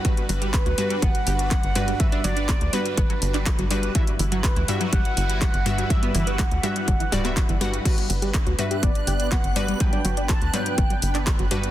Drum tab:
CC |----------------|----------------|----------------|----------------|
HH |xxoxxxoxxxoxxxox|xxoxxxoxxxoxxxox|xxoxxxoxxxoxxxox|xxoxxxoxxxoxxxox|
CP |----x-------x---|----x------xx---|----x-------x---|----x------xx---|
BD |o---o---o---o---|o---o---o---o---|o---o---o---o---|o---o---o---o---|

CC |x---------------|----------------|
HH |xxoxxxoxxxoxxxox|xxoxxxoxxxoxxxox|
CP |----x-------x---|----x------xx---|
BD |o---o---o---o---|o---o---o---o---|